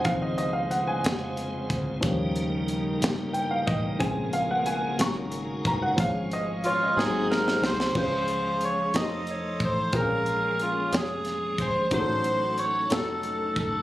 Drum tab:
CC |------------|------------|------------|------------|
HH |x-x-x-x-x-x-|x-x-x-x-x-x-|x-x-x-x-x-x-|x-x-x-------|
SD |------o-----|------o-----|------o-----|------o-oooo|
BD |o---------o-|o---------o-|o---------o-|o-----------|

CC |x-----------|------------|------------|
HH |--x-x-x-x-x-|x-x-x-x-x-x-|x-x-x-x-x-x-|
SD |------o-----|------o-o---|------o-----|
BD |o---------o-|o---------o-|o---------o-|